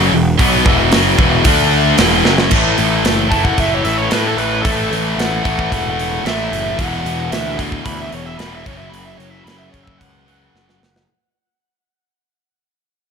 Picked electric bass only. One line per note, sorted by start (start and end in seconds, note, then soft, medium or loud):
0.00 0.10 F#1 loud
0.12 0.37 E1 medium
0.39 0.63 B1 loud
0.66 0.90 E1 loud
0.92 1.16 F#1 loud
1.18 1.43 E1 medium
1.45 1.94 D2 loud
1.99 2.23 E1 medium
2.26 2.49 F#1 loud
2.51 2.74 A1 medium
2.79 3.01 A1 medium
3.04 3.51 F#1 medium
3.58 3.81 F#1 medium
3.85 4.08 A1 medium
4.12 4.34 A2 medium
4.37 4.60 A1 medium
4.65 4.88 A1 medium
4.91 5.14 A1 medium
5.17 5.40 A1 medium
5.45 5.68 A1 medium
5.72 6.18 E1 medium
6.25 6.48 A1 medium
6.51 6.75 F#1 medium
6.79 7.02 E1 medium
7.05 7.28 E1 medium
7.32 7.79 D2 medium
7.86 8.09 D2 medium
8.12 8.36 E1 medium
8.39 8.62 E1 medium
8.66 8.89 F#1 medium
8.92 9.15 F#1 medium
9.18 9.42 F#1 medium
9.45 9.69 F#1 medium
9.74 9.97 F#1 medium
10.01 10.48 C#2 medium
10.55 10.78 F#1 medium
10.82 11.05 F#1 medium